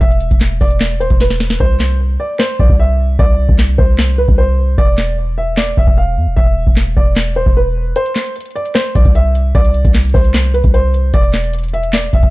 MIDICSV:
0, 0, Header, 1, 4, 480
1, 0, Start_track
1, 0, Tempo, 397351
1, 14, Time_signature, 4, 2, 24, 8
1, 14862, End_track
2, 0, Start_track
2, 0, Title_t, "Grand piano"
2, 0, Program_c, 0, 0
2, 9, Note_on_c, 0, 76, 91
2, 463, Note_off_c, 0, 76, 0
2, 735, Note_on_c, 0, 74, 81
2, 1186, Note_off_c, 0, 74, 0
2, 1213, Note_on_c, 0, 72, 77
2, 1440, Note_off_c, 0, 72, 0
2, 1463, Note_on_c, 0, 71, 80
2, 1910, Note_off_c, 0, 71, 0
2, 1936, Note_on_c, 0, 72, 102
2, 2387, Note_off_c, 0, 72, 0
2, 2654, Note_on_c, 0, 74, 81
2, 2881, Note_off_c, 0, 74, 0
2, 2887, Note_on_c, 0, 72, 94
2, 3117, Note_off_c, 0, 72, 0
2, 3136, Note_on_c, 0, 74, 83
2, 3362, Note_off_c, 0, 74, 0
2, 3377, Note_on_c, 0, 76, 86
2, 3827, Note_off_c, 0, 76, 0
2, 3855, Note_on_c, 0, 74, 101
2, 4306, Note_off_c, 0, 74, 0
2, 4569, Note_on_c, 0, 72, 78
2, 5023, Note_off_c, 0, 72, 0
2, 5052, Note_on_c, 0, 71, 75
2, 5279, Note_off_c, 0, 71, 0
2, 5292, Note_on_c, 0, 72, 80
2, 5744, Note_off_c, 0, 72, 0
2, 5776, Note_on_c, 0, 74, 109
2, 6227, Note_off_c, 0, 74, 0
2, 6496, Note_on_c, 0, 76, 81
2, 6722, Note_off_c, 0, 76, 0
2, 6732, Note_on_c, 0, 74, 78
2, 6959, Note_off_c, 0, 74, 0
2, 6980, Note_on_c, 0, 76, 84
2, 7204, Note_off_c, 0, 76, 0
2, 7218, Note_on_c, 0, 77, 77
2, 7668, Note_off_c, 0, 77, 0
2, 7689, Note_on_c, 0, 76, 97
2, 8143, Note_off_c, 0, 76, 0
2, 8415, Note_on_c, 0, 74, 82
2, 8866, Note_off_c, 0, 74, 0
2, 8894, Note_on_c, 0, 72, 75
2, 9120, Note_off_c, 0, 72, 0
2, 9143, Note_on_c, 0, 71, 83
2, 9590, Note_off_c, 0, 71, 0
2, 9617, Note_on_c, 0, 72, 100
2, 10067, Note_off_c, 0, 72, 0
2, 10335, Note_on_c, 0, 74, 80
2, 10561, Note_off_c, 0, 74, 0
2, 10567, Note_on_c, 0, 72, 93
2, 10797, Note_off_c, 0, 72, 0
2, 10816, Note_on_c, 0, 74, 81
2, 11042, Note_off_c, 0, 74, 0
2, 11056, Note_on_c, 0, 76, 88
2, 11507, Note_off_c, 0, 76, 0
2, 11535, Note_on_c, 0, 74, 102
2, 11986, Note_off_c, 0, 74, 0
2, 12249, Note_on_c, 0, 72, 80
2, 12703, Note_off_c, 0, 72, 0
2, 12732, Note_on_c, 0, 71, 76
2, 12960, Note_off_c, 0, 71, 0
2, 12972, Note_on_c, 0, 72, 80
2, 13425, Note_off_c, 0, 72, 0
2, 13455, Note_on_c, 0, 74, 107
2, 13906, Note_off_c, 0, 74, 0
2, 14175, Note_on_c, 0, 76, 83
2, 14401, Note_off_c, 0, 76, 0
2, 14412, Note_on_c, 0, 74, 76
2, 14640, Note_off_c, 0, 74, 0
2, 14660, Note_on_c, 0, 76, 84
2, 14862, Note_off_c, 0, 76, 0
2, 14862, End_track
3, 0, Start_track
3, 0, Title_t, "808-style bass"
3, 0, Program_c, 1, 38
3, 14, Note_on_c, 1, 28, 107
3, 360, Note_off_c, 1, 28, 0
3, 375, Note_on_c, 1, 28, 97
3, 720, Note_off_c, 1, 28, 0
3, 736, Note_on_c, 1, 28, 103
3, 1311, Note_off_c, 1, 28, 0
3, 1334, Note_on_c, 1, 28, 102
3, 1910, Note_off_c, 1, 28, 0
3, 1934, Note_on_c, 1, 36, 112
3, 2626, Note_off_c, 1, 36, 0
3, 3135, Note_on_c, 1, 35, 103
3, 3247, Note_off_c, 1, 35, 0
3, 3254, Note_on_c, 1, 36, 102
3, 3830, Note_off_c, 1, 36, 0
3, 3854, Note_on_c, 1, 36, 110
3, 4200, Note_off_c, 1, 36, 0
3, 4215, Note_on_c, 1, 36, 99
3, 4560, Note_off_c, 1, 36, 0
3, 4576, Note_on_c, 1, 36, 103
3, 5151, Note_off_c, 1, 36, 0
3, 5174, Note_on_c, 1, 36, 104
3, 5751, Note_off_c, 1, 36, 0
3, 5774, Note_on_c, 1, 28, 110
3, 6927, Note_off_c, 1, 28, 0
3, 6975, Note_on_c, 1, 28, 107
3, 7087, Note_off_c, 1, 28, 0
3, 7094, Note_on_c, 1, 28, 106
3, 7454, Note_on_c, 1, 40, 100
3, 7472, Note_off_c, 1, 28, 0
3, 7574, Note_on_c, 1, 28, 102
3, 7592, Note_off_c, 1, 40, 0
3, 7688, Note_off_c, 1, 28, 0
3, 7695, Note_on_c, 1, 28, 108
3, 8040, Note_off_c, 1, 28, 0
3, 8055, Note_on_c, 1, 28, 102
3, 8401, Note_off_c, 1, 28, 0
3, 8416, Note_on_c, 1, 28, 103
3, 8991, Note_off_c, 1, 28, 0
3, 9014, Note_on_c, 1, 28, 99
3, 9591, Note_off_c, 1, 28, 0
3, 10815, Note_on_c, 1, 35, 101
3, 10927, Note_off_c, 1, 35, 0
3, 10934, Note_on_c, 1, 36, 101
3, 11511, Note_off_c, 1, 36, 0
3, 11534, Note_on_c, 1, 36, 108
3, 11880, Note_off_c, 1, 36, 0
3, 11895, Note_on_c, 1, 36, 102
3, 12240, Note_off_c, 1, 36, 0
3, 12256, Note_on_c, 1, 36, 104
3, 12831, Note_off_c, 1, 36, 0
3, 12854, Note_on_c, 1, 36, 99
3, 13431, Note_off_c, 1, 36, 0
3, 13454, Note_on_c, 1, 28, 107
3, 14606, Note_off_c, 1, 28, 0
3, 14654, Note_on_c, 1, 28, 104
3, 14767, Note_off_c, 1, 28, 0
3, 14774, Note_on_c, 1, 28, 107
3, 14862, Note_off_c, 1, 28, 0
3, 14862, End_track
4, 0, Start_track
4, 0, Title_t, "Drums"
4, 14, Note_on_c, 9, 36, 125
4, 14, Note_on_c, 9, 42, 80
4, 132, Note_off_c, 9, 42, 0
4, 132, Note_on_c, 9, 42, 57
4, 135, Note_off_c, 9, 36, 0
4, 247, Note_off_c, 9, 42, 0
4, 247, Note_on_c, 9, 42, 63
4, 368, Note_off_c, 9, 42, 0
4, 375, Note_on_c, 9, 36, 100
4, 375, Note_on_c, 9, 42, 79
4, 493, Note_on_c, 9, 38, 94
4, 495, Note_on_c, 9, 39, 75
4, 496, Note_off_c, 9, 36, 0
4, 496, Note_off_c, 9, 42, 0
4, 496, Note_on_c, 9, 42, 71
4, 614, Note_off_c, 9, 38, 0
4, 616, Note_off_c, 9, 39, 0
4, 617, Note_off_c, 9, 42, 0
4, 735, Note_on_c, 9, 36, 104
4, 737, Note_on_c, 9, 46, 65
4, 852, Note_on_c, 9, 42, 58
4, 856, Note_off_c, 9, 36, 0
4, 858, Note_off_c, 9, 46, 0
4, 973, Note_off_c, 9, 42, 0
4, 974, Note_on_c, 9, 38, 113
4, 976, Note_on_c, 9, 39, 89
4, 977, Note_on_c, 9, 42, 81
4, 1092, Note_off_c, 9, 42, 0
4, 1092, Note_on_c, 9, 42, 62
4, 1095, Note_off_c, 9, 38, 0
4, 1097, Note_off_c, 9, 39, 0
4, 1212, Note_off_c, 9, 42, 0
4, 1217, Note_on_c, 9, 42, 76
4, 1332, Note_off_c, 9, 42, 0
4, 1332, Note_on_c, 9, 42, 50
4, 1334, Note_on_c, 9, 36, 97
4, 1452, Note_off_c, 9, 42, 0
4, 1454, Note_on_c, 9, 38, 60
4, 1454, Note_on_c, 9, 42, 70
4, 1455, Note_off_c, 9, 36, 0
4, 1575, Note_off_c, 9, 38, 0
4, 1575, Note_off_c, 9, 42, 0
4, 1575, Note_on_c, 9, 38, 64
4, 1694, Note_off_c, 9, 38, 0
4, 1694, Note_on_c, 9, 38, 89
4, 1694, Note_on_c, 9, 42, 47
4, 1774, Note_off_c, 9, 42, 0
4, 1774, Note_on_c, 9, 42, 67
4, 1814, Note_off_c, 9, 38, 0
4, 1814, Note_on_c, 9, 38, 92
4, 1854, Note_off_c, 9, 42, 0
4, 1854, Note_on_c, 9, 42, 85
4, 1934, Note_on_c, 9, 36, 126
4, 1935, Note_off_c, 9, 38, 0
4, 1975, Note_off_c, 9, 42, 0
4, 2055, Note_off_c, 9, 36, 0
4, 2175, Note_on_c, 9, 38, 93
4, 2177, Note_on_c, 9, 39, 77
4, 2296, Note_off_c, 9, 38, 0
4, 2297, Note_off_c, 9, 39, 0
4, 2894, Note_on_c, 9, 38, 116
4, 2896, Note_on_c, 9, 39, 95
4, 3015, Note_off_c, 9, 38, 0
4, 3017, Note_off_c, 9, 39, 0
4, 3135, Note_on_c, 9, 36, 94
4, 3254, Note_off_c, 9, 36, 0
4, 3254, Note_on_c, 9, 36, 97
4, 3375, Note_off_c, 9, 36, 0
4, 3854, Note_on_c, 9, 36, 122
4, 3975, Note_off_c, 9, 36, 0
4, 4215, Note_on_c, 9, 36, 104
4, 4334, Note_on_c, 9, 38, 93
4, 4336, Note_off_c, 9, 36, 0
4, 4336, Note_on_c, 9, 39, 73
4, 4455, Note_off_c, 9, 38, 0
4, 4456, Note_off_c, 9, 39, 0
4, 4576, Note_on_c, 9, 36, 107
4, 4696, Note_off_c, 9, 36, 0
4, 4815, Note_on_c, 9, 38, 117
4, 4817, Note_on_c, 9, 39, 94
4, 4935, Note_off_c, 9, 38, 0
4, 4937, Note_off_c, 9, 39, 0
4, 5174, Note_on_c, 9, 36, 100
4, 5295, Note_off_c, 9, 36, 0
4, 5774, Note_on_c, 9, 36, 123
4, 5895, Note_off_c, 9, 36, 0
4, 6015, Note_on_c, 9, 38, 93
4, 6017, Note_on_c, 9, 39, 75
4, 6135, Note_off_c, 9, 38, 0
4, 6137, Note_off_c, 9, 39, 0
4, 6735, Note_on_c, 9, 38, 115
4, 6737, Note_on_c, 9, 39, 91
4, 6856, Note_off_c, 9, 38, 0
4, 6857, Note_off_c, 9, 39, 0
4, 6975, Note_on_c, 9, 36, 96
4, 7094, Note_off_c, 9, 36, 0
4, 7094, Note_on_c, 9, 36, 102
4, 7215, Note_off_c, 9, 36, 0
4, 7695, Note_on_c, 9, 36, 122
4, 7815, Note_off_c, 9, 36, 0
4, 8055, Note_on_c, 9, 36, 103
4, 8174, Note_on_c, 9, 38, 93
4, 8176, Note_off_c, 9, 36, 0
4, 8176, Note_on_c, 9, 39, 76
4, 8295, Note_off_c, 9, 38, 0
4, 8297, Note_off_c, 9, 39, 0
4, 8416, Note_on_c, 9, 36, 103
4, 8537, Note_off_c, 9, 36, 0
4, 8655, Note_on_c, 9, 38, 119
4, 8657, Note_on_c, 9, 39, 93
4, 8776, Note_off_c, 9, 38, 0
4, 8777, Note_off_c, 9, 39, 0
4, 9015, Note_on_c, 9, 36, 99
4, 9135, Note_off_c, 9, 36, 0
4, 9614, Note_on_c, 9, 42, 76
4, 9732, Note_off_c, 9, 42, 0
4, 9732, Note_on_c, 9, 42, 57
4, 9847, Note_off_c, 9, 42, 0
4, 9847, Note_on_c, 9, 42, 60
4, 9855, Note_on_c, 9, 38, 91
4, 9856, Note_on_c, 9, 39, 75
4, 9968, Note_off_c, 9, 42, 0
4, 9975, Note_off_c, 9, 38, 0
4, 9975, Note_on_c, 9, 42, 81
4, 9977, Note_off_c, 9, 39, 0
4, 10094, Note_off_c, 9, 42, 0
4, 10094, Note_on_c, 9, 42, 74
4, 10154, Note_off_c, 9, 42, 0
4, 10154, Note_on_c, 9, 42, 64
4, 10215, Note_off_c, 9, 42, 0
4, 10215, Note_on_c, 9, 42, 54
4, 10275, Note_off_c, 9, 42, 0
4, 10275, Note_on_c, 9, 42, 42
4, 10338, Note_off_c, 9, 42, 0
4, 10338, Note_on_c, 9, 42, 66
4, 10452, Note_off_c, 9, 42, 0
4, 10452, Note_on_c, 9, 42, 60
4, 10573, Note_off_c, 9, 42, 0
4, 10575, Note_on_c, 9, 38, 114
4, 10577, Note_on_c, 9, 39, 92
4, 10577, Note_on_c, 9, 42, 84
4, 10692, Note_off_c, 9, 42, 0
4, 10692, Note_on_c, 9, 42, 62
4, 10696, Note_off_c, 9, 38, 0
4, 10697, Note_off_c, 9, 39, 0
4, 10813, Note_off_c, 9, 42, 0
4, 10815, Note_on_c, 9, 36, 95
4, 10817, Note_on_c, 9, 42, 74
4, 10932, Note_off_c, 9, 42, 0
4, 10932, Note_on_c, 9, 42, 48
4, 10934, Note_off_c, 9, 36, 0
4, 10934, Note_on_c, 9, 36, 103
4, 11052, Note_off_c, 9, 42, 0
4, 11054, Note_on_c, 9, 42, 70
4, 11055, Note_off_c, 9, 36, 0
4, 11175, Note_off_c, 9, 42, 0
4, 11295, Note_on_c, 9, 42, 80
4, 11416, Note_off_c, 9, 42, 0
4, 11534, Note_on_c, 9, 36, 124
4, 11534, Note_on_c, 9, 42, 79
4, 11652, Note_off_c, 9, 42, 0
4, 11652, Note_on_c, 9, 42, 57
4, 11655, Note_off_c, 9, 36, 0
4, 11767, Note_off_c, 9, 42, 0
4, 11767, Note_on_c, 9, 42, 62
4, 11888, Note_off_c, 9, 42, 0
4, 11895, Note_on_c, 9, 36, 104
4, 11895, Note_on_c, 9, 42, 80
4, 12014, Note_off_c, 9, 42, 0
4, 12014, Note_on_c, 9, 38, 95
4, 12014, Note_on_c, 9, 42, 74
4, 12016, Note_off_c, 9, 36, 0
4, 12016, Note_on_c, 9, 39, 72
4, 12075, Note_off_c, 9, 42, 0
4, 12075, Note_on_c, 9, 42, 66
4, 12134, Note_off_c, 9, 42, 0
4, 12134, Note_on_c, 9, 42, 54
4, 12135, Note_off_c, 9, 38, 0
4, 12137, Note_off_c, 9, 39, 0
4, 12194, Note_off_c, 9, 42, 0
4, 12194, Note_on_c, 9, 42, 43
4, 12256, Note_on_c, 9, 36, 104
4, 12257, Note_on_c, 9, 46, 64
4, 12315, Note_off_c, 9, 42, 0
4, 12372, Note_on_c, 9, 42, 58
4, 12376, Note_off_c, 9, 36, 0
4, 12378, Note_off_c, 9, 46, 0
4, 12493, Note_off_c, 9, 42, 0
4, 12494, Note_on_c, 9, 38, 117
4, 12496, Note_on_c, 9, 39, 89
4, 12497, Note_on_c, 9, 42, 81
4, 12611, Note_off_c, 9, 42, 0
4, 12611, Note_on_c, 9, 42, 58
4, 12615, Note_off_c, 9, 38, 0
4, 12617, Note_off_c, 9, 39, 0
4, 12732, Note_off_c, 9, 42, 0
4, 12737, Note_on_c, 9, 42, 79
4, 12851, Note_off_c, 9, 42, 0
4, 12851, Note_on_c, 9, 42, 47
4, 12854, Note_on_c, 9, 36, 102
4, 12972, Note_off_c, 9, 42, 0
4, 12974, Note_on_c, 9, 42, 67
4, 12975, Note_off_c, 9, 36, 0
4, 13095, Note_off_c, 9, 42, 0
4, 13214, Note_on_c, 9, 42, 83
4, 13335, Note_off_c, 9, 42, 0
4, 13453, Note_on_c, 9, 42, 80
4, 13454, Note_on_c, 9, 36, 126
4, 13571, Note_off_c, 9, 42, 0
4, 13571, Note_on_c, 9, 42, 55
4, 13575, Note_off_c, 9, 36, 0
4, 13687, Note_off_c, 9, 42, 0
4, 13687, Note_on_c, 9, 42, 63
4, 13694, Note_on_c, 9, 38, 95
4, 13696, Note_on_c, 9, 39, 77
4, 13807, Note_off_c, 9, 42, 0
4, 13815, Note_off_c, 9, 38, 0
4, 13815, Note_on_c, 9, 42, 82
4, 13817, Note_off_c, 9, 39, 0
4, 13934, Note_off_c, 9, 42, 0
4, 13934, Note_on_c, 9, 42, 76
4, 13994, Note_off_c, 9, 42, 0
4, 13994, Note_on_c, 9, 42, 64
4, 14054, Note_off_c, 9, 42, 0
4, 14054, Note_on_c, 9, 42, 54
4, 14114, Note_off_c, 9, 42, 0
4, 14114, Note_on_c, 9, 42, 44
4, 14177, Note_off_c, 9, 42, 0
4, 14177, Note_on_c, 9, 42, 65
4, 14291, Note_off_c, 9, 42, 0
4, 14291, Note_on_c, 9, 42, 60
4, 14412, Note_off_c, 9, 42, 0
4, 14414, Note_on_c, 9, 38, 114
4, 14416, Note_on_c, 9, 39, 93
4, 14416, Note_on_c, 9, 42, 82
4, 14531, Note_off_c, 9, 42, 0
4, 14531, Note_on_c, 9, 42, 61
4, 14535, Note_off_c, 9, 38, 0
4, 14537, Note_off_c, 9, 39, 0
4, 14652, Note_off_c, 9, 42, 0
4, 14654, Note_on_c, 9, 36, 95
4, 14656, Note_on_c, 9, 42, 77
4, 14771, Note_off_c, 9, 42, 0
4, 14771, Note_on_c, 9, 42, 48
4, 14774, Note_off_c, 9, 36, 0
4, 14774, Note_on_c, 9, 36, 98
4, 14862, Note_off_c, 9, 36, 0
4, 14862, Note_off_c, 9, 42, 0
4, 14862, End_track
0, 0, End_of_file